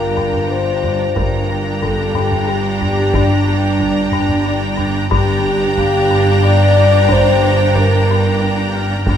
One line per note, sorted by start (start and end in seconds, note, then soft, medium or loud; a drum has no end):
0.00 1.12 G1 medium
0.00 1.12 G2 medium
0.00 1.12 D4 medium
0.00 1.79 F4 soft
0.00 0.50 A#4 medium
0.00 1.79 F5 medium
0.00 1.12 G5 medium
0.00 1.11 A#5 medium
0.17 0.37 G2 medium
0.17 taiko low-mid soft
0.33 taiko low-mid soft
0.49 0.70 G2 medium
0.49 1.16 C5 medium
0.83 1.03 G2 medium
0.83 taiko low-mid medium
1.16 5.08 G1 soft
1.16 5.07 G2 medium
1.16 1.36 G2 medium
1.16 5.07 D4 medium
1.16 1.82 A#4 medium
1.16 5.08 G5 soft
1.16 5.08 A#5 medium
1.16 taiko medium
1.50 1.69 G2 soft
1.82 2.02 G2 medium
1.82 2.48 A4 medium
1.82 taiko medium
2.15 2.35 G2 medium
2.15 4.09 G4 soft
2.15 4.09 G5 medium
2.15 taiko low-mid soft
2.32 taiko low-mid medium
2.49 2.68 G2 medium
2.49 3.14 G4 medium
2.81 3.01 G2 medium
2.81 taiko low-mid medium
3.14 3.35 G2 medium
3.14 4.46 D4 medium
3.14 taiko medium
3.48 3.68 G2 medium
3.79 4.00 G2 medium
3.79 taiko medium
4.12 4.33 G2 medium
4.12 taiko low-mid medium
4.29 taiko low-mid medium
4.46 4.66 G2 medium
4.46 4.78 D4 medium
4.78 4.98 G2 medium
4.78 taiko low-mid soft
5.11 9.03 G1 medium
5.11 9.03 G2 medium
5.11 5.31 G2 loud
5.11 9.03 D4 medium
5.11 6.39 G4 loud
5.11 9.04 G5 medium
5.11 9.03 A#5 medium
5.11 taiko medium
5.44 5.64 G2 medium
5.77 5.98 G2 medium
5.77 7.71 F5 medium
5.77 taiko medium
6.11 6.30 G2 medium
6.44 6.63 G2 medium
6.44 7.10 D5 loud
6.77 6.97 G2 medium
7.09 7.29 G2 medium
7.09 7.76 C5 loud
7.09 9.03 A#5 soft
7.09 taiko medium
7.42 7.62 G2 medium
7.75 7.95 G2 medium
7.75 8.75 A#4 medium
7.75 taiko medium
8.10 8.29 G2 medium
8.42 8.62 G2 medium
8.75 8.94 G2 medium
8.75 9.17 F6 soft
9.06 9.17 G1 medium
9.06 9.17 G2 medium
9.06 9.17 D4 medium
9.06 9.17 G5 medium
9.06 9.17 A#5 soft
9.06 taiko medium